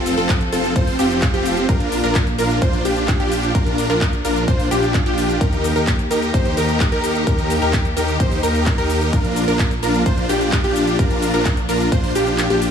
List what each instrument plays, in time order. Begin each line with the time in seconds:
Already playing: detuned saw bass F1, string section F3 C4 A4, supersaw synth C4 F4 A4, synth pluck A4
0.06 open hi-hat, cabasa
0.18 detuned saw bass F1, supersaw synth C4 F4 A4, synth pluck A4, closed hi-hat, cabasa
0.29 kick, clap, closed hi-hat, cabasa
0.41 closed hi-hat, cabasa
0.52 detuned saw bass F1, supersaw synth C4 F4 A4, synth pluck A4, open hi-hat, cabasa
0.64 closed hi-hat, cabasa
0.76 detuned saw bass F1, supersaw synth C4 F4 C5, synth pluck C5, kick, closed hi-hat, cabasa
0.87 open hi-hat, cabasa
0.99 detuned saw bass F1, supersaw synth C4 F4 G4, synth pluck G4, open hi-hat, cabasa
1.11 closed hi-hat, cabasa
1.22 kick, clap, closed hi-hat, cabasa
1.34 detuned saw bass F1, supersaw synth C4 F4 G4, synth pluck G4, closed hi-hat, cabasa
1.45 open hi-hat, cabasa
1.57 closed hi-hat, cabasa
1.69 detuned saw bass A#1, string section A#3 D4, supersaw synth D4 F4 A#4, synth pluck A#4, kick, closed hi-hat, cabasa
1.80 closed hi-hat, cabasa
1.92 open hi-hat, cabasa
2.04 detuned saw bass A#1, supersaw synth D4 F4 A#4, synth pluck A#4, closed hi-hat, cabasa
2.15 kick, clap, closed hi-hat, cabasa
2.27 closed hi-hat, cabasa
2.38 detuned saw bass A#1, supersaw synth D4 F4 A#4, synth pluck A#4, open hi-hat, cabasa
2.50 closed hi-hat, cabasa
2.62 detuned saw bass A#1, supersaw synth D4 F4 C5, synth pluck C5, kick, closed hi-hat, cabasa
2.73 closed hi-hat, cabasa
2.85 detuned saw bass A#1, supersaw synth D4 F4 G4, synth pluck G4, open hi-hat, cabasa
2.97 closed hi-hat, cabasa
3.08 kick, clap, closed hi-hat, cabasa
3.20 detuned saw bass A#1, supersaw synth D4 F4 G4, synth pluck G4, closed hi-hat, cabasa
3.32 open hi-hat, cabasa
3.43 closed hi-hat, cabasa
3.55 detuned saw bass A#1, supersaw synth D4 F4 A#4, synth pluck A#4, kick, closed hi-hat, cabasa
3.67 closed hi-hat, cabasa
3.78 open hi-hat, cabasa
3.90 detuned saw bass A#1, supersaw synth D4 F4 A#4, synth pluck A#4, clap, closed hi-hat, cabasa
4.01 kick, clap, closed hi-hat, cabasa
4.13 closed hi-hat, cabasa
4.25 detuned saw bass A#1, supersaw synth D4 F4 A#4, synth pluck A#4, open hi-hat, cabasa
4.36 closed hi-hat, cabasa
4.48 detuned saw bass A#1, supersaw synth D4 F4 C5, synth pluck C5, kick, closed hi-hat, cabasa
4.60 open hi-hat, cabasa
4.71 detuned saw bass A#1, supersaw synth D4 F4 G4, synth pluck G4, open hi-hat, cabasa
4.83 closed hi-hat, cabasa
4.94 kick, clap, closed hi-hat, cabasa
5.06 detuned saw bass A#1, supersaw synth D4 F4 G4, synth pluck G4, closed hi-hat, cabasa
5.18 open hi-hat, cabasa
5.29 closed hi-hat, cabasa
5.41 detuned saw bass D#2, string section D#3 A#3 G4, supersaw synth D#4 G4 A#4, synth pluck A#4, kick, closed hi-hat, cabasa
5.53 closed hi-hat, cabasa
5.64 open hi-hat, cabasa
5.76 detuned saw bass D#2, supersaw synth D#4 G4 A#4, synth pluck A#4, closed hi-hat, cabasa
5.87 kick, clap, closed hi-hat, cabasa
5.99 closed hi-hat, cabasa
6.11 detuned saw bass D#2, supersaw synth D#4 G4 A#4, synth pluck A#4, open hi-hat, cabasa
6.22 closed hi-hat, cabasa
6.34 detuned saw bass D#2, supersaw synth D#4 G4 C5, synth pluck C5, kick, closed hi-hat, cabasa
6.46 closed hi-hat, cabasa
6.57 detuned saw bass D#2, supersaw synth D#4 G4 A#4, synth pluck A#4, open hi-hat, cabasa
6.69 closed hi-hat, cabasa
6.80 kick, clap, closed hi-hat, cabasa
6.92 detuned saw bass D#2, supersaw synth D#4 G4 A#4, synth pluck A#4, closed hi-hat, cabasa
7.04 open hi-hat, cabasa
7.15 closed hi-hat, cabasa
7.27 detuned saw bass D#2, supersaw synth D#4 G4 A#4, synth pluck A#4, kick, closed hi-hat, cabasa
7.39 closed hi-hat, cabasa
7.50 open hi-hat, cabasa
7.62 detuned saw bass D#2, supersaw synth D#4 G4 A#4, synth pluck A#4, closed hi-hat, cabasa
7.73 kick, clap, closed hi-hat, cabasa
7.85 closed hi-hat, cabasa
7.97 detuned saw bass D#2, supersaw synth D#4 G4 A#4, synth pluck A#4, open hi-hat, cabasa
8.08 closed hi-hat, cabasa
8.20 detuned saw bass D#2, supersaw synth D#4 G4 C5, synth pluck C5, kick, closed hi-hat, cabasa
8.32 open hi-hat, cabasa
8.43 detuned saw bass D#2, supersaw synth D#4 G4 A#4, synth pluck A#4, open hi-hat, cabasa
8.55 closed hi-hat, cabasa
8.66 kick, clap, closed hi-hat, cabasa
8.78 detuned saw bass D#2, supersaw synth D#4 G4 A#4, synth pluck A#4, closed hi-hat, cabasa
8.90 open hi-hat, cabasa
9.01 closed hi-hat, cabasa
9.13 detuned saw bass A#1, string section F3 D4, supersaw synth D4 F4 A#4, synth pluck A#4, kick, closed hi-hat, cabasa
9.25 closed hi-hat, cabasa
9.36 open hi-hat, cabasa
9.48 detuned saw bass A#1, supersaw synth D4 F4 A#4, synth pluck A#4, closed hi-hat, cabasa
9.59 kick, clap, closed hi-hat, cabasa
9.71 closed hi-hat, cabasa
9.83 detuned saw bass A#1, supersaw synth D4 F4 A#4, synth pluck A#4, open hi-hat, cabasa
9.94 closed hi-hat, cabasa
10.06 detuned saw bass A#1, supersaw synth D4 F4 C5, synth pluck C5, kick, closed hi-hat, cabasa
10.18 closed hi-hat, cabasa
10.29 detuned saw bass A#1, supersaw synth D4 F4 G4, synth pluck G4, open hi-hat, cabasa
10.41 closed hi-hat, cabasa
10.52 kick, clap, closed hi-hat, cabasa
10.64 detuned saw bass A#1, supersaw synth D4 F4 G4, synth pluck G4, closed hi-hat, cabasa
10.76 open hi-hat, cabasa
10.87 closed hi-hat, cabasa
10.99 detuned saw bass A#1, supersaw synth D4 F4 A#4, synth pluck A#4, kick, closed hi-hat, cabasa
11.11 closed hi-hat, cabasa
11.22 open hi-hat, cabasa
11.34 detuned saw bass A#1, supersaw synth D4 F4 A#4, synth pluck A#4, clap, closed hi-hat, cabasa
11.45 kick, clap, closed hi-hat, cabasa
11.57 closed hi-hat, cabasa
11.69 detuned saw bass A#1, supersaw synth D4 F4 A#4, synth pluck A#4, open hi-hat, cabasa
11.80 closed hi-hat, cabasa
11.92 detuned saw bass A#1, supersaw synth D4 F4 C5, synth pluck C5, kick, closed hi-hat, cabasa
12.04 open hi-hat, cabasa
12.15 detuned saw bass A#1, supersaw synth D4 F4 G4, synth pluck G4, open hi-hat, cabasa
12.27 closed hi-hat, cabasa
12.38 clap, closed hi-hat, cabasa
12.50 detuned saw bass A#1, supersaw synth D4 F4 G4, synth pluck G4, closed hi-hat, cabasa
12.62 open hi-hat, cabasa